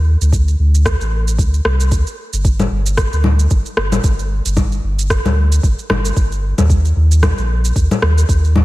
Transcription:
0.00 0.16 D#2 medium
0.21 0.55 D2 medium
0.21 shaker medium
0.33 kick loud
0.33 shaker medium
0.48 shaker soft
0.59 0.96 D2 loud
0.75 shaker medium
0.86 kick loud
0.86 cross-stick medium
0.86 shaker medium
1.01 1.40 A1 medium
1.01 shaker soft
1.28 shaker medium
1.38 1.60 D2 medium
1.38 kick loud
1.38 shaker medium
1.54 shaker soft
1.65 1.93 C2 medium
1.65 cross-stick medium
1.80 shaker medium
1.92 2.04 D2 medium
1.92 kick medium
1.92 shaker medium
2.07 shaker soft
2.33 2.67 G1 medium
2.33 shaker medium
2.45 kick loud
2.45 shaker medium
2.60 low conga medium
2.60 shaker soft
2.71 3.08 G1 loud
2.86 shaker medium
2.97 kick loud
2.97 cross-stick medium
2.97 shaker medium
3.13 3.47 D2 medium
3.13 shaker soft
3.24 low conga medium
3.39 shaker medium
3.50 3.63 G1 medium
3.50 kick loud
3.50 shaker medium
3.66 shaker soft
3.77 3.99 G1 medium
3.77 cross-stick medium
3.92 low conga medium
3.92 shaker medium
4.04 4.41 G1 medium
4.04 kick loud
4.04 shaker medium
4.19 shaker soft
4.46 4.80 G1 loud
4.46 shaker medium
4.57 kick loud
4.57 low conga medium
4.57 shaker medium
4.72 shaker soft
4.84 5.20 G1 loud
4.99 shaker medium
5.10 kick loud
5.10 cross-stick medium
5.10 shaker medium
5.25 5.59 D2 medium
5.25 low conga medium
5.25 shaker soft
5.52 shaker medium
5.63 5.75 G1 medium
5.63 kick loud
5.63 shaker medium
5.79 shaker soft
5.90 6.12 G1 medium
5.90 cross-stick medium
5.90 low conga medium
6.05 shaker medium
6.17 6.53 G1 medium
6.17 kick medium
6.17 shaker medium
6.32 shaker soft
6.58 6.92 D#2 medium
6.58 low conga medium
6.58 shaker medium
6.70 kick medium
6.70 shaker soft
6.85 shaker soft
6.96 7.33 D#2 loud
7.11 shaker medium
7.23 kick medium
7.23 cross-stick medium
7.23 low conga medium
7.23 shaker medium
7.38 7.72 A#1 medium
7.38 shaker soft
7.65 shaker medium
7.76 7.88 D#2 medium
7.76 kick medium
7.76 shaker soft
7.91 low conga medium
7.91 shaker soft
8.02 8.24 D#2 medium
8.02 cross-stick medium
8.18 shaker medium
8.29 8.65 D#2 loud
8.29 kick medium
8.29 shaker medium
8.45 shaker soft
8.56 low conga medium

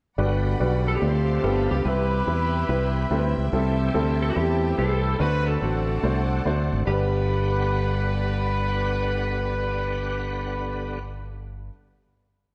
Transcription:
0.18 0.54 G1 medium
0.18 0.83 G2 medium
0.18 1.01 D3 medium
0.18 0.52 G3 medium
0.18 1.01 G3 medium
0.18 1.01 B3 medium
0.18 0.52 D4 medium
0.18 0.52 F#4 medium
0.18 1.01 F#4 medium
0.18 0.52 B4 medium
0.18 1.43 D5 medium
0.18 1.01 F#5 medium
0.18 1.01 B5 medium
0.60 0.96 B1 medium
0.60 0.94 G3 medium
0.60 0.94 D4 medium
0.60 0.94 F#4 medium
0.60 0.94 B4 medium
0.88 0.94 A4 medium
0.88 0.95 A4 medium
0.95 1.68 C4 medium
0.95 1.70 G4 medium
1.02 1.37 D2 medium
1.02 1.41 D3 medium
1.02 1.44 D3 medium
1.02 1.35 A3 medium
1.02 1.43 A3 soft
1.02 1.44 C4 medium
1.02 1.36 D4 soft
1.02 1.09 E4 soft
1.02 1.36 F4 medium
1.02 1.09 B4 medium
1.02 1.43 F5 medium
1.02 1.85 A5 medium
1.02 1.43 C6 medium
1.07 1.47 F4 medium
1.07 1.38 C5 medium
1.43 1.67 G1 medium
1.43 1.83 G2 medium
1.43 1.86 F3 medium
1.43 1.77 G3 medium
1.43 1.86 A3 medium
1.43 1.51 A#3 soft
1.43 1.77 B3 medium
1.43 1.77 F4 medium
1.43 1.86 G4 medium
1.43 1.77 A4 medium
1.43 1.85 F5 medium
1.43 3.51 G5 medium
1.43 3.51 B5 medium
1.49 1.88 B3 medium
1.71 1.83 C#2 medium
1.71 1.84 G4 medium
1.71 1.86 G4 medium
1.85 2.21 C2 medium
1.85 2.51 C3 medium
1.85 3.50 E3 medium
1.85 2.19 G3 medium
1.85 2.19 C4 medium
1.85 3.50 C4 medium
1.85 2.19 E4 medium
1.85 3.35 E4 medium
1.85 1.93 F#4 medium
1.85 3.34 G4 medium
1.85 3.34 B4 medium
1.85 3.38 B4 loud
1.85 2.19 B4 medium
1.85 3.50 B4 medium
1.85 5.17 E5 medium
1.92 3.52 G4 medium
2.27 2.63 E2 medium
2.27 2.61 G3 medium
2.27 2.61 C4 medium
2.27 2.61 E4 medium
2.27 2.61 B4 medium
2.69 3.04 C2 medium
2.69 3.03 G3 medium
2.69 3.03 C4 medium
2.69 3.03 E4 medium
2.69 3.03 B4 medium
2.96 3.10 B5 medium
3.11 3.34 D2 medium
3.11 3.45 G3 medium
3.11 3.45 C4 medium
3.11 3.45 E4 medium
3.11 3.18 A4 medium
3.11 3.36 G5 medium
3.16 3.47 B4 medium
3.38 3.50 C#2 medium
3.38 3.52 E5 medium
3.52 3.88 C2 medium
3.52 4.18 C3 medium
3.52 5.17 E3 medium
3.52 3.86 G3 medium
3.52 5.17 A3 medium
3.52 3.86 C4 medium
3.52 5.17 C4 medium
3.52 3.86 E4 medium
3.52 5.17 G4 medium
3.52 3.87 A4 medium
3.52 5.18 G5 medium
3.52 5.18 A5 medium
3.94 4.30 D2 medium
3.94 4.28 G3 medium
3.94 4.28 C4 medium
3.94 4.28 E4 medium
3.94 4.28 A4 medium
4.22 4.29 A4 medium
4.29 4.78 E4 medium
4.29 4.78 G4 medium
4.35 4.72 E2 medium
4.35 4.70 G3 medium
4.35 4.70 C4 medium
4.35 4.70 E4 medium
4.35 4.70 A4 medium
4.78 5.14 C2 medium
4.78 5.12 G3 medium
4.78 5.12 C4 medium
4.78 5.12 E4 medium
4.78 5.18 E4 medium
4.78 5.20 A4 medium
4.78 5.22 A4 medium
4.78 5.12 B4 medium
5.19 5.56 D2 medium
5.19 6.84 D3 medium
5.19 5.85 D3 medium
5.19 6.84 A3 medium
5.19 5.53 A3 medium
5.19 6.84 C4 medium
5.19 5.54 D4 medium
5.19 5.26 F4 soft
5.19 5.54 F#4 medium
5.19 5.46 F#4 medium
5.19 5.47 B4 loud
5.19 5.49 B4 medium
5.19 5.54 C5 medium
5.19 6.86 D5 medium
5.19 6.86 F#5 medium
5.19 6.86 A5 medium
5.24 6.87 F#4 medium
5.47 6.27 C4 medium
5.47 6.27 F#4 medium
5.47 6.31 A4 medium
5.47 6.28 A4 medium
5.61 5.98 A1 medium
5.61 5.95 A3 medium
5.61 5.96 D4 medium
5.61 5.96 F#4 medium
5.61 5.96 C5 medium
6.03 6.39 C2 medium
6.03 6.37 A3 medium
6.03 6.38 D4 medium
6.03 6.38 F#4 medium
6.03 6.38 C5 medium
6.45 6.69 D2 medium
6.45 6.79 A3 medium
6.45 6.80 D4 medium
6.45 6.79 F#4 medium
6.45 6.80 C5 medium
6.73 6.85 G#1 medium
6.86 11.69 G1 medium
6.86 11.69 G2 medium
6.86 10.99 D3 medium
6.86 11.68 G3 medium
6.86 10.99 G3 medium
6.86 10.99 B3 medium
6.86 11.69 D4 medium
6.86 10.99 G4 medium
6.86 10.99 B4 medium
6.86 11.70 B4 medium
6.86 10.99 D5 medium
6.86 10.99 F#5 medium
6.86 11.69 F#5 medium
6.86 10.99 F#5 medium

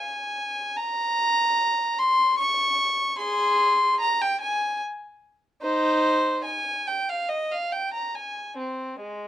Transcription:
0.00 0.75 G#5 medium
0.77 1.98 A#5 loud
1.98 2.38 C6 loud
2.38 3.17 C#6 loud
3.18 3.96 G#4 medium
3.18 3.98 C6 loud
4.00 4.20 A#5 medium
4.21 4.41 G5 medium
4.41 4.80 G#5 medium
5.62 6.41 D#4 medium
5.62 6.41 C5 medium
6.45 6.86 G#5 medium
6.87 7.08 G5 medium
7.09 7.30 F5 medium
7.29 7.50 D#5 medium
7.51 7.72 F5 medium
7.72 7.93 G5 medium
7.94 8.15 A#5 medium
8.14 8.59 G#5 medium
8.58 9.01 C4 medium
9.01 9.28 G#3 medium

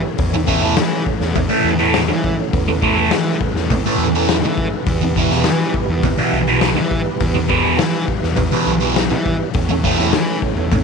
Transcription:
0.00 9.49 E3 medium
0.00 0.14 G3 medium
0.00 0.15 B3 medium
0.00 0.14 G4 medium
0.00 2.49 C#5 medium
0.16 0.78 E2 loud
0.16 4.81 A3 medium
0.16 4.82 C#4 medium
0.16 4.82 A4 medium
0.16 kick loud
0.16 open hi-hat medium
0.34 muted distorted electric guitar stroke soft
0.47 0.62 A2 medium
0.47 0.62 E3 medium
0.47 0.61 A3 medium
0.47 kick medium
0.63 0.76 A2 medium
0.63 0.76 E3 medium
0.63 0.76 A3 medium
0.77 1.02 E3 loud
0.77 muted distorted electric guitar stroke soft
0.77 snare loud
0.77 open hi-hat medium
1.06 kick medium
1.20 1.46 E2 medium
1.20 snare soft
1.35 muted distorted electric guitar stroke soft
1.35 kick loud
1.35 open hi-hat medium
1.49 1.70 A2 medium
1.49 1.69 E3 medium
1.49 1.69 A3 medium
1.64 2.11 E2 medium
1.79 1.99 A2 medium
1.79 1.98 E3 medium
1.79 1.98 A3 medium
1.94 snare loud
1.94 open hi-hat medium
2.08 2.34 E3 medium
2.08 muted distorted electric guitar stroke soft
2.24 kick medium
2.52 3.12 E2 loud
2.52 9.49 B4 medium
2.52 kick loud
2.52 open hi-hat medium
2.68 muted distorted electric guitar stroke medium
2.82 2.96 A2 medium
2.82 2.95 E3 loud
2.82 2.95 A3 loud
2.82 kick medium
2.96 3.11 A2 medium
2.96 3.11 E3 medium
2.96 3.11 A3 medium
3.11 3.36 E3 medium
3.11 muted distorted electric guitar stroke medium
3.11 snare loud
3.11 open hi-hat medium
3.41 kick medium
3.54 3.79 E2 medium
3.54 snare soft
3.70 muted distorted electric guitar stroke soft
3.70 kick loud
3.70 open hi-hat medium
3.86 4.05 A2 medium
3.86 4.05 E3 medium
3.86 4.04 A3 medium
3.98 4.43 E2 medium
4.15 4.34 A2 medium
4.15 4.33 E3 medium
4.15 4.33 A3 medium
4.29 snare loud
4.29 open hi-hat soft
4.41 4.67 E3 medium
4.41 muted distorted electric guitar stroke soft
4.58 kick medium
4.86 5.47 E2 medium
4.86 9.50 G3 medium
4.86 9.50 B3 medium
4.86 9.50 G4 medium
4.86 kick loud
4.86 open hi-hat medium
5.02 muted distorted electric guitar stroke soft
5.16 5.31 E2 medium
5.16 5.31 B2 medium
5.16 5.30 E3 loud
5.16 kick medium
5.31 5.45 E2 medium
5.31 5.46 B2 medium
5.31 5.46 E3 medium
5.31 snare soft
5.44 5.70 E3 loud
5.44 muted distorted electric guitar stroke soft
5.44 snare loud
5.44 open hi-hat medium
5.74 kick medium
5.88 6.13 E2 medium
6.03 muted distorted electric guitar stroke soft
6.03 kick loud
6.03 open hi-hat medium
6.18 6.37 E2 medium
6.18 6.37 B2 medium
6.18 6.37 E3 medium
6.32 6.77 B1 medium
6.47 6.67 E2 medium
6.47 6.67 B2 medium
6.47 6.66 E3 medium
6.61 snare loud
6.61 open hi-hat medium
6.75 7.00 E3 medium
6.75 muted distorted electric guitar stroke soft
6.91 kick medium
7.20 7.80 E2 loud
7.20 kick loud
7.20 open hi-hat medium
7.34 muted distorted electric guitar stroke soft
7.48 7.62 E2 medium
7.48 7.62 B2 medium
7.48 7.61 E3 loud
7.48 kick medium
7.62 7.76 E2 medium
7.62 7.77 B2 medium
7.62 7.77 E3 medium
7.77 8.03 E3 loud
7.77 muted distorted electric guitar stroke medium
7.77 snare loud
7.77 open hi-hat medium
8.08 kick medium
8.23 8.47 E2 medium
8.23 snare soft
8.36 muted distorted electric guitar stroke soft
8.36 kick loud
8.36 open hi-hat medium
8.52 8.71 E2 medium
8.52 8.71 B2 medium
8.52 8.71 E3 medium
8.66 9.12 B1 medium
8.80 9.00 E2 medium
8.80 9.00 B2 medium
8.80 9.00 E3 medium
8.96 snare loud
8.96 open hi-hat medium
9.10 9.35 E3 medium
9.10 muted distorted electric guitar stroke soft
9.26 kick medium
9.54 10.14 E2 loud
9.54 10.84 E3 medium
9.54 10.84 A3 medium
9.54 10.84 C#4 medium
9.54 10.84 A4 medium
9.54 10.84 C#5 medium
9.54 kick loud
9.54 open hi-hat medium
9.69 muted distorted electric guitar stroke medium
9.84 9.98 A2 loud
9.84 9.98 E3 loud
9.84 9.98 A3 loud
9.84 kick medium
9.99 10.12 A2 medium
9.99 10.12 E3 medium
9.99 10.13 A3 medium
9.99 snare soft
10.13 10.37 E3 loud
10.13 muted distorted electric guitar stroke soft
10.13 snare loud
10.13 open hi-hat medium
10.42 kick medium
10.56 10.81 E2 medium
10.72 muted distorted electric guitar stroke medium
10.72 kick loud
10.72 open hi-hat medium

